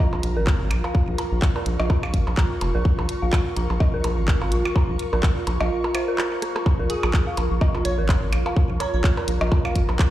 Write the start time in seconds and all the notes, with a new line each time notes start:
Already playing: F4 A#4 A#5
0.13 A#1, percussion blips
0.23 A#1, closed hi-hat
0.37 G#1 A#4
0.47 kick, clap, percussion blips
0.52 C#6
0.60 G#1
0.71 A#1, closed hi-hat, percussion blips
0.84 F5, percussion blips
0.95 kick
1.08 A#1
1.18 A#5, closed hi-hat, percussion blips
1.32 A#1
1.42 kick, clap
1.56 A#4, percussion blips
1.66 A#1, closed hi-hat
1.79 A#1, percussion blips
1.90 kick, percussion blips
2.03 F5, percussion blips
2.14 G#1, kick, closed hi-hat
2.27 A#1, percussion blips
2.37 A#5, kick, clap
2.61 F1, closed hi-hat, percussion blips
2.75 A#1 A#4
2.85 kick
2.99 A#1, percussion blips
3.09 closed hi-hat
3.22 A#1 F5
3.33 kick, clap, percussion blips
3.56 A#1 A#5, closed hi-hat
3.70 A#1, percussion blips
3.80 kick, percussion blips
3.94 A#1 A#4
4.04 A#1, closed hi-hat, percussion blips
4.18 G#1
4.28 kick, clap
4.41 G#1 F5, percussion blips
4.52 A#1, closed hi-hat
4.65 percussion blips
4.76 A#5, kick, percussion blips
4.89 A#1
4.99 closed hi-hat
5.13 A#1 A#4, percussion blips
5.23 kick, clap
5.47 A#1, closed hi-hat, percussion blips
5.60 A#1 F5, percussion blips
5.84 percussion blips
5.95 C5, closed hi-hat, percussion blips
6.08 A#4
6.18 clap, percussion blips
6.32 A#5
6.42 cross-stick, closed hi-hat
6.56 cross-stick, percussion blips
6.66 kick, percussion blips
6.79 A#1 A#4
6.90 G#4, closed hi-hat
7.03 A#1 G#4, percussion blips
7.14 kick, clap
7.27 F5
7.37 A#1, closed hi-hat, percussion blips
7.51 A#1
7.61 A#5, kick, percussion blips
7.75 A#1, percussion blips
7.85 A#1 C#5, closed hi-hat
7.98 G#1 A#4
8.09 kick, clap, percussion blips
8.13 A#5
8.22 G#1
8.33 A#1, closed hi-hat, percussion blips
8.46 F5, percussion blips
8.56 kick
8.70 A#1
8.80 C#5 A#5, closed hi-hat, percussion blips
8.94 A#1 C#5
9.04 kick, clap
9.17 A#4, percussion blips
9.28 A#1, closed hi-hat
9.41 A#1, percussion blips
9.52 kick, percussion blips
9.65 F5, percussion blips
9.75 G#1, kick, closed hi-hat
9.89 A#1, percussion blips
9.99 A#5, kick, clap